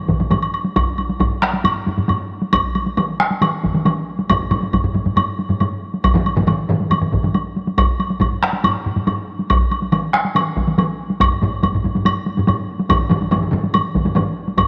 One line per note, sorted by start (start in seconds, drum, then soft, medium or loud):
0.08 taiko medium
0.08 taiko low-mid medium
0.08 taiko mid medium
0.08 taiko high medium
0.20 taiko low-mid medium
0.20 taiko mid medium
0.20 taiko high soft
0.31 taiko low-mid medium
0.31 taiko mid medium
0.31 taiko high medium
0.31 high woodblock soft
0.43 high woodblock soft
0.54 high woodblock soft
0.64 taiko high medium
0.76 taiko loud
0.76 taiko high medium
0.76 high woodblock medium
0.98 taiko high medium
0.98 high woodblock soft
1.09 taiko high medium
1.20 taiko medium
1.20 taiko low-mid medium
1.20 taiko high medium
1.20 high woodblock soft
1.42 taiko rim medium
1.42 taiko high medium
1.53 taiko high medium
1.64 taiko low-mid medium
1.64 taiko high medium
1.64 high woodblock medium
1.86 taiko low-mid medium
1.86 taiko high medium
1.98 taiko low-mid medium
1.98 taiko high soft
2.08 taiko low-mid medium
2.08 taiko high medium
2.08 high woodblock soft
2.42 taiko high medium
2.53 taiko medium
2.53 taiko high medium
2.53 high woodblock medium
2.75 taiko high medium
2.75 high woodblock soft
2.86 taiko high medium
2.97 taiko mid loud
2.97 taiko high medium
2.97 high woodblock soft
3.20 taiko rim medium
3.20 taiko high medium
3.31 taiko high medium
3.41 taiko mid loud
3.41 taiko high medium
3.41 high woodblock medium
3.63 taiko medium
3.63 taiko mid medium
3.63 taiko high soft
3.74 taiko mid medium
3.74 taiko high medium
3.85 taiko mid loud
3.85 taiko high medium
3.85 high woodblock soft
4.19 taiko high medium
4.30 taiko loud
4.30 taiko low-mid medium
4.30 taiko high medium
4.30 high woodblock medium
4.40 taiko low-mid medium
4.51 taiko low-mid loud
4.51 taiko high medium
4.51 high woodblock soft
4.63 taiko high soft
4.73 taiko medium
4.73 taiko low-mid medium
4.73 taiko high medium
4.73 high woodblock soft
4.84 taiko low-mid medium
4.94 taiko low-mid medium
4.94 taiko high medium
5.06 taiko low-mid medium
5.06 taiko high soft
5.16 taiko low-mid medium
5.16 taiko high medium
5.16 high woodblock medium
5.39 taiko high soft
5.49 taiko low-mid medium
5.49 taiko high soft
5.60 taiko low-mid medium
5.60 taiko high medium
5.60 high woodblock soft
5.94 taiko high soft
6.04 taiko medium
6.04 taiko high medium
6.04 high woodblock medium
6.14 taiko low-mid loud
6.14 taiko mid loud
6.26 taiko high soft
6.26 high woodblock soft
6.36 taiko low-mid loud
6.36 taiko mid loud
6.36 taiko high soft
6.47 taiko low-mid medium
6.47 taiko mid loud
6.47 taiko high medium
6.47 high woodblock soft
6.69 taiko low-mid medium
6.69 taiko mid loud
6.69 taiko high soft
6.81 taiko high soft
6.90 taiko low-mid medium
6.90 taiko mid medium
6.90 taiko high medium
6.90 high woodblock soft
7.01 taiko low-mid medium
7.01 taiko mid medium
7.12 taiko medium
7.12 taiko low-mid medium
7.12 taiko mid medium
7.23 taiko low-mid medium
7.23 taiko mid medium
7.23 taiko high soft
7.34 taiko high medium
7.34 high woodblock soft
7.56 taiko high soft
7.67 taiko high medium
7.78 taiko loud
7.78 taiko high medium
7.78 high woodblock medium
7.99 taiko high medium
7.99 high woodblock soft
8.10 taiko high soft
8.21 taiko medium
8.21 taiko low-mid medium
8.21 taiko high medium
8.21 high woodblock soft
8.42 taiko rim medium
8.42 taiko high soft
8.53 taiko high soft
8.64 taiko low-mid loud
8.64 taiko high medium
8.64 high woodblock medium
8.86 taiko low-mid medium
8.96 taiko low-mid medium
8.96 taiko high soft
9.07 taiko low-mid medium
9.07 taiko high medium
9.07 high woodblock soft
9.39 taiko high soft
9.50 taiko loud
9.50 taiko high medium
9.50 high woodblock medium
9.71 taiko high soft
9.71 high woodblock soft
9.82 taiko high soft
9.92 taiko mid loud
9.92 taiko high medium
9.92 high woodblock soft
10.14 taiko rim medium
10.14 taiko high soft
10.25 taiko high medium
10.35 taiko mid loud
10.35 taiko high medium
10.35 high woodblock medium
10.56 taiko medium
10.56 taiko mid medium
10.56 taiko high medium
10.68 taiko mid medium
10.68 taiko high medium
10.78 taiko mid loud
10.78 taiko high medium
10.78 high woodblock soft
11.10 taiko high medium
11.20 taiko loud
11.20 taiko low-mid medium
11.20 taiko high medium
11.20 high woodblock medium
11.32 taiko low-mid medium
11.42 taiko low-mid loud
11.42 taiko high medium
11.63 taiko medium
11.63 taiko low-mid medium
11.63 taiko high medium
11.63 high woodblock soft
11.75 taiko low-mid medium
11.84 taiko low-mid medium
11.84 taiko high medium
11.95 taiko low-mid medium
11.95 taiko high medium
12.05 taiko low-mid medium
12.05 taiko high medium
12.05 high woodblock medium
12.26 taiko high medium
12.37 taiko low-mid medium
12.37 taiko high medium
12.47 taiko low-mid medium
12.47 taiko high medium
12.47 high woodblock soft
12.79 taiko high medium
12.89 taiko medium
12.89 taiko low-mid loud
12.89 taiko mid loud
12.89 taiko high medium
12.89 high woodblock medium
13.11 taiko low-mid loud
13.11 taiko mid loud
13.11 taiko high medium
13.11 high woodblock soft
13.22 taiko high medium
13.31 taiko low-mid loud
13.31 taiko mid loud
13.31 taiko high medium
13.31 high woodblock soft
13.42 taiko low-mid medium
13.42 taiko mid medium
13.52 taiko low-mid loud
13.52 taiko mid loud
13.52 taiko high medium
13.64 taiko high medium
13.73 taiko low-mid medium
13.73 taiko mid medium
13.73 taiko high medium
13.73 high woodblock medium
13.95 taiko medium
13.95 taiko low-mid medium
13.95 taiko mid medium
13.95 taiko high medium
14.05 taiko low-mid medium
14.05 taiko mid medium
14.05 taiko high medium
14.15 taiko low-mid medium
14.15 taiko mid loud
14.15 taiko high medium
14.15 high woodblock soft
14.48 taiko high medium
14.58 taiko medium
14.58 taiko low-mid medium
14.58 taiko high medium
14.58 high woodblock medium